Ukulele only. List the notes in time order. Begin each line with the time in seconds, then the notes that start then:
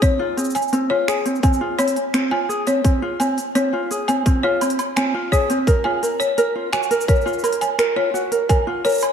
0.02 C4
0.19 F4
0.37 C4
0.73 C4
0.90 F4
1.08 G#4
1.26 C4
1.43 C4
1.61 F4
1.79 C4
2.14 C4
2.31 F4
2.49 G#4
2.67 C4
2.84 C4
3.02 F4
3.20 C4
3.55 C4
3.73 F4
3.91 G#4
4.08 C4
4.26 C4
4.44 F4
4.62 C4
4.97 C4
5.14 F4
5.32 G#4
5.50 C4
5.67 A#4
5.85 F4
6.03 A#4
6.38 A#4
6.55 F4
6.73 F#4
6.91 A#4
7.08 A#4
7.26 F4
7.43 A#4
7.78 A#4
7.96 F4
8.14 F#4
8.31 A#4
8.49 A#4
8.67 F4
8.85 A#4